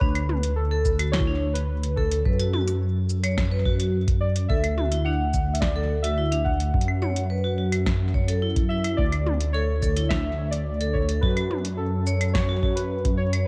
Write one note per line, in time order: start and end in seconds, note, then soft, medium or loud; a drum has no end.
0.00 2.23 D2 medium
0.00 0.10 D4 medium
0.00 0.53 B4 loud
0.00 kick loud
0.15 closed hi-hat medium
0.15 claves medium
0.29 high tom medium
0.43 closed hi-hat medium
0.56 1.14 A4 medium
0.71 0.77 A4 loud
0.85 kick medium
0.85 shaker medium
0.99 1.08 F#4 medium
0.99 closed hi-hat medium
0.99 claves medium
1.12 1.27 E4 medium
1.12 1.56 C#5 loud
1.12 snare loud
1.20 kick loud
1.27 1.36 D4 medium
1.54 1.98 B4 medium
1.54 closed hi-hat medium
1.83 closed hi-hat medium
1.96 2.77 A4 medium
1.96 2.03 A4 loud
1.96 kick medium
2.11 closed hi-hat medium
2.25 4.47 F#2 medium
2.25 2.34 B4 medium
2.25 kick loud
2.39 2.52 F#4 medium
2.39 closed hi-hat medium
2.39 claves medium
2.53 2.62 F#4 medium
2.53 high tom medium
2.68 closed hi-hat medium
3.10 shaker medium
3.23 3.29 C#5 loud
3.23 closed hi-hat medium
3.23 claves medium
3.38 kick loud
3.38 snare loud
3.38 claves medium
3.52 3.60 B4 medium
3.66 3.78 F#4 medium
3.66 kick loud
3.80 3.89 F#4 medium
3.80 closed hi-hat medium
4.08 kick loud
4.08 closed hi-hat medium
4.20 4.50 D5 medium
4.36 closed hi-hat medium
4.48 6.71 D2 medium
4.48 4.55 A4 loud
4.48 5.07 E5 loud
4.48 kick loud
4.64 closed hi-hat medium
4.64 claves medium
4.78 4.87 F#4 medium
4.78 high tom medium
4.92 5.05 E4 medium
4.92 closed hi-hat medium
5.05 5.15 D4 medium
5.05 5.56 F#5 loud
5.34 kick medium
5.34 shaker medium
5.53 5.61 E5 medium
5.53 closed hi-hat medium
5.60 6.05 D5 medium
5.60 kick loud
5.60 snare loud
5.76 5.81 A4 loud
6.02 6.13 F#4 medium
6.02 6.42 E5 medium
6.02 closed hi-hat medium
6.18 6.31 E4 medium
6.32 6.41 D4 medium
6.32 closed hi-hat medium
6.44 7.25 F#5 loud
6.44 kick medium
6.60 closed hi-hat medium
6.74 8.96 F#2 medium
6.74 kick loud
6.81 closed hi-hat medium
6.88 claves medium
7.02 7.07 C#5 loud
7.02 high tom medium
7.16 closed hi-hat medium
7.30 7.39 B4 medium
7.44 7.57 F#4 medium
7.58 7.67 F#4 medium
7.72 closed hi-hat medium
7.72 claves medium
7.86 kick loud
7.86 snare loud
7.86 claves medium
8.14 8.23 C#5 medium
8.14 kick loud
8.28 8.34 A4 medium
8.28 closed hi-hat medium
8.42 8.48 E4 medium
8.56 kick loud
8.56 closed hi-hat medium
8.69 8.79 E4 medium
8.69 8.98 E5 loud
8.84 8.90 E4 medium
8.84 closed hi-hat medium
8.84 claves medium
8.97 11.20 D2 medium
8.97 9.55 D5 loud
8.97 kick loud
9.12 closed hi-hat soft
9.12 claves medium
9.26 high tom medium
9.41 closed hi-hat medium
9.53 9.60 A4 loud
9.53 10.11 C#5 loud
9.82 9.96 A4 medium
9.82 kick medium
9.82 shaker medium
9.96 10.10 E4 medium
9.96 closed hi-hat medium
10.09 10.19 D4 medium
10.09 10.49 E5 loud
10.09 kick loud
10.09 snare loud
10.51 10.95 D5 loud
10.51 closed hi-hat medium
10.81 10.86 A4 loud
10.81 closed hi-hat soft
10.93 11.06 C#5 loud
10.93 kick medium
11.09 11.22 A4 medium
11.09 closed hi-hat medium
11.21 13.44 F#2 medium
11.21 11.36 F#4 medium
11.21 11.74 B4 loud
11.21 kick loud
11.37 11.46 F#4 medium
11.37 closed hi-hat soft
11.37 claves medium
11.51 high tom medium
11.65 closed hi-hat medium
11.77 12.36 A4 medium
12.07 12.12 C#5 loud
12.07 shaker medium
12.21 closed hi-hat medium
12.21 claves medium
12.33 12.77 C#5 loud
12.33 12.48 C#5 medium
12.33 kick loud
12.33 snare loud
12.33 claves medium
12.49 12.62 F#4 medium
12.63 12.72 F#4 medium
12.63 kick loud
12.75 13.15 B4 medium
12.75 closed hi-hat medium
13.05 kick loud
13.05 closed hi-hat medium
13.17 13.30 C#5 loud
13.33 13.38 C#5 loud
13.33 closed hi-hat medium
13.33 claves medium